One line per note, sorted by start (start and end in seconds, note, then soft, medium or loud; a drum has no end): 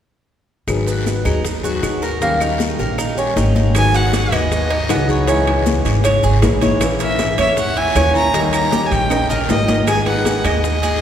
0.67 1.21 G#1 medium
0.67 1.25 D#3 medium
0.67 1.25 F#3 medium
0.67 1.26 B3 medium
0.67 1.26 D#4 medium
0.67 1.24 G#4 medium
0.67 high bongo medium
0.67 high conga soft
0.67 long guiro medium
0.67 claves medium
0.67 maracas medium
0.87 1.24 B4 medium
0.87 high conga soft
0.87 maracas medium
1.06 high bongo soft
1.06 high conga soft
1.06 short guiro medium
1.06 maracas medium
1.25 1.79 D#2 medium
1.25 1.44 F#3 soft
1.25 1.44 B3 soft
1.25 1.63 D#4 medium
1.25 1.44 D#4 soft
1.25 1.44 G#4 medium
1.25 high conga soft
1.25 short guiro medium
1.25 claves medium
1.25 maracas soft
1.45 muted nylon-string guitar stroke medium
1.45 high bongo medium
1.45 high conga soft
1.45 long guiro medium
1.45 maracas medium
1.64 1.81 F#3 soft
1.64 1.82 B3 medium
1.64 1.83 D#4 medium
1.64 2.01 F#4 medium
1.64 1.82 G#4 medium
1.64 high conga soft
1.64 maracas soft
1.83 2.73 D#2 medium
1.83 2.20 F#3 soft
1.83 2.21 B3 soft
1.83 2.21 D#4 soft
1.83 2.22 G#4 soft
1.83 high bongo medium
1.83 low bongo medium
1.83 high conga soft
1.83 short guiro medium
1.83 claves medium
1.83 maracas medium
2.02 2.21 A#4 medium
2.02 high conga soft
2.02 short guiro medium
2.02 maracas soft
2.21 2.78 D#3 medium
2.21 2.78 G3 medium
2.21 2.40 A#3 medium
2.21 2.79 C#4 medium
2.21 2.77 G4 medium
2.21 high bongo medium
2.21 high conga soft
2.21 long guiro medium
2.21 maracas medium
2.41 2.78 D#4 medium
2.41 high bongo soft
2.41 high conga soft
2.41 claves medium
2.41 maracas soft
2.60 high bongo soft
2.60 high conga medium
2.60 short guiro medium
2.60 maracas medium
2.79 3.32 A#1 medium
2.79 2.97 G3 soft
2.79 2.97 C#4 soft
2.79 2.97 G4 medium
2.79 2.98 A#4 medium
2.79 high bongo soft
2.79 high conga soft
2.79 short guiro medium
2.79 maracas soft
2.98 3.17 D#4 medium
2.98 muted nylon-string guitar stroke medium
2.98 high bongo medium
2.98 high conga soft
2.98 long guiro medium
2.98 claves medium
2.98 maracas medium
3.17 3.36 G3 medium
3.17 3.36 C#4 medium
3.17 3.35 G4 medium
3.17 high bongo soft
3.17 high conga soft
3.17 maracas soft
3.36 4.26 G#1 medium
3.36 3.73 D#3 soft
3.36 3.74 G3 soft
3.36 3.75 C#4 soft
3.36 3.55 D#4 medium
3.36 3.75 G4 soft
3.36 high bongo medium
3.36 low bongo medium
3.36 high conga medium
3.36 short guiro medium
3.36 maracas medium
3.55 3.74 D#4 medium
3.55 high conga medium
3.55 short guiro medium
3.55 maracas soft
3.74 4.50 D#3 medium
3.74 4.50 F#3 medium
3.74 4.50 B3 medium
3.74 4.52 D#4 medium
3.74 4.52 G#4 medium
3.74 3.97 G#5 loud
3.74 high bongo medium
3.74 high timbale medium
3.74 long guiro medium
3.74 claves medium
3.74 maracas medium
3.94 4.31 F#4 medium
3.94 4.36 F#5 medium
3.94 high conga soft
3.94 high timbale medium
3.94 maracas medium
4.13 high bongo medium
4.13 high conga soft
4.13 high timbale medium
4.13 low timbale medium
4.13 short guiro medium
4.13 maracas medium
4.32 4.86 D#2 medium
4.32 4.70 B4 medium
4.32 5.12 D#5 medium
4.32 high conga soft
4.32 high timbale medium
4.32 short guiro medium
4.32 claves medium
4.32 maracas soft
4.51 muted nylon-string guitar stroke soft
4.51 high bongo medium
4.51 high conga soft
4.51 long guiro medium
4.51 maracas medium
4.70 4.89 D#4 medium
4.70 high conga soft
4.70 high timbale medium
4.89 5.80 C#2 medium
4.89 5.08 F#3 soft
4.89 5.27 B3 medium
4.89 5.08 B3 soft
4.89 5.07 D#4 soft
4.89 5.07 G#4 soft
4.89 high bongo medium
4.89 low bongo medium
4.89 high conga soft
4.89 high timbale medium
4.89 low timbale medium
4.89 short guiro medium
4.89 claves soft
4.89 maracas medium
5.08 5.27 F#3 soft
5.08 5.27 B3 medium
5.08 5.27 D#4 medium
5.08 5.27 G#4 medium
5.08 5.48 C#5 medium
5.08 high conga soft
5.08 short guiro medium
5.08 maracas soft
5.26 6.03 C#3 medium
5.26 6.04 E3 medium
5.26 6.03 G#3 medium
5.26 5.65 C#4 medium
5.26 6.04 D#4 medium
5.26 6.05 E4 medium
5.26 high bongo medium
5.26 high conga soft
5.26 high timbale medium
5.26 long guiro medium
5.26 maracas medium
5.47 high bongo soft
5.47 high conga soft
5.47 high timbale medium
5.47 claves medium
5.66 high bongo medium
5.66 high conga medium
5.66 low timbale soft
5.66 short guiro medium
5.66 maracas medium
5.85 6.21 G#1 medium
5.85 high bongo soft
5.85 high conga soft
5.85 high timbale medium
5.85 short guiro medium
5.85 maracas soft
6.04 6.23 C#5 medium
6.04 muted nylon-string guitar stroke soft
6.04 high bongo medium
6.04 high conga soft
6.04 high timbale medium
6.04 long guiro medium
6.04 claves medium
6.04 maracas medium
6.23 6.41 G#1 medium
6.23 6.61 G#4 medium
6.23 high bongo soft
6.23 high conga soft
6.23 maracas soft
6.41 7.32 A#1 medium
6.41 6.61 E3 soft
6.41 6.61 G#3 soft
6.41 6.61 D#4 medium
6.41 6.60 E4 medium
6.41 high bongo medium
6.41 low bongo medium
6.41 high conga medium
6.41 high timbale medium
6.41 low timbale medium
6.41 short guiro medium
6.41 maracas medium
6.61 6.78 E3 medium
6.61 6.80 G#3 medium
6.61 6.80 D#4 medium
6.61 6.80 E4 medium
6.61 6.99 C#5 medium
6.61 high conga medium
6.61 high timbale medium
6.61 short guiro medium
6.61 maracas soft
6.80 7.56 E3 medium
6.80 7.57 A#3 medium
6.80 7.57 C#4 medium
6.80 7.57 E4 medium
6.80 high bongo medium
6.80 high conga soft
6.80 high timbale medium
6.80 long guiro medium
6.80 claves medium
6.80 maracas medium
7.00 7.37 A#4 medium
7.00 7.37 E5 medium
7.00 high conga soft
7.00 high timbale medium
7.00 maracas medium
7.19 high bongo medium
7.19 high conga medium
7.19 high timbale medium
7.19 low timbale medium
7.19 short guiro medium
7.19 maracas medium
7.38 7.92 E2 medium
7.38 7.76 C#5 medium
7.38 7.57 E5 medium
7.38 high conga soft
7.38 high timbale medium
7.38 short guiro medium
7.38 claves medium
7.38 maracas soft
7.57 7.78 F#5 medium
7.57 muted nylon-string guitar stroke medium
7.57 high bongo medium
7.57 high conga soft
7.57 long guiro medium
7.57 maracas medium
7.77 7.95 E4 medium
7.77 8.15 G#5 medium
7.77 high conga soft
7.77 high timbale medium
7.95 8.86 D#2 medium
7.95 8.14 E3 soft
7.95 8.14 A#3 medium
7.95 8.33 C#4 medium
7.95 8.14 C#4 medium
7.95 8.13 E4 soft
7.95 high bongo medium
7.95 low bongo medium
7.95 high conga soft
7.95 high timbale medium
7.95 low timbale medium
7.95 short guiro medium
7.95 claves soft
7.95 maracas medium
8.14 8.34 A#3 medium
8.14 8.34 C#4 medium
8.14 8.33 E4 medium
8.14 8.51 A#5 medium
8.14 high conga soft
8.14 short guiro medium
8.14 maracas soft
8.34 9.09 D#3 medium
8.34 9.10 G3 medium
8.34 9.10 A#3 medium
8.34 8.71 D#4 medium
8.34 9.11 D#4 medium
8.34 9.11 G4 medium
8.34 high bongo medium
8.34 high conga soft
8.34 high timbale medium
8.34 long guiro medium
8.34 maracas medium
8.53 8.88 A#5 medium
8.53 high bongo soft
8.53 high conga soft
8.53 high timbale medium
8.53 claves medium
8.53 maracas medium
8.72 9.10 G4 medium
8.72 high bongo medium
8.72 high conga medium
8.72 low timbale medium
8.72 short guiro medium
8.72 maracas medium
8.86 8.93 G#5 medium
8.91 9.27 A#1 medium
8.91 9.29 G5 medium
8.91 high bongo soft
8.91 high conga soft
8.91 high timbale medium
8.91 short guiro medium
8.91 maracas soft
9.10 9.30 D#5 medium
9.10 muted nylon-string guitar stroke soft
9.10 high bongo medium
9.10 high conga soft
9.10 high timbale medium
9.10 long guiro medium
9.10 claves medium
9.10 maracas medium
9.30 9.48 A#1 medium
9.30 9.67 A#4 medium
9.30 9.38 D#5 medium
9.30 high bongo soft
9.30 high conga soft
9.30 maracas medium
9.48 10.39 G#1 medium
9.48 9.67 G3 soft
9.48 9.68 A#3 soft
9.48 9.67 D#4 soft
9.48 9.67 G4 medium
9.48 9.76 D#5 medium
9.48 high bongo medium
9.48 low bongo medium
9.48 high conga medium
9.48 low timbale medium
9.48 short guiro medium
9.48 maracas medium
9.68 9.87 G3 medium
9.68 9.87 A#3 medium
9.68 9.87 D#4 medium
9.68 9.86 G4 medium
9.68 10.06 D#5 medium
9.68 high conga medium
9.68 low timbale medium
9.68 short guiro medium
9.68 maracas soft
9.86 10.63 D#3 medium
9.86 10.63 G#3 medium
9.86 10.64 B3 medium
9.86 10.64 D#4 medium
9.86 10.64 G#4 medium
9.86 10.05 G#5 medium
9.86 high bongo medium
9.86 high timbale medium
9.86 long guiro medium
9.86 claves medium
9.86 maracas medium
10.06 10.44 B4 medium
10.06 10.47 F#5 medium
10.06 high conga soft
10.06 high timbale medium
10.25 high bongo soft
10.25 high conga soft
10.25 high timbale medium
10.25 low timbale medium
10.25 short guiro medium
10.25 maracas medium
10.45 10.98 D#2 medium
10.45 10.82 D#5 medium
10.45 11.01 D#5 medium
10.45 high conga soft
10.45 high timbale medium
10.45 short guiro medium
10.45 claves medium
10.45 maracas soft
10.64 muted nylon-string guitar stroke medium
10.64 high bongo medium
10.64 high conga soft
10.64 long guiro medium
10.64 maracas medium
10.83 11.01 G#4 medium
10.83 high conga soft
10.83 high timbale medium
10.83 maracas soft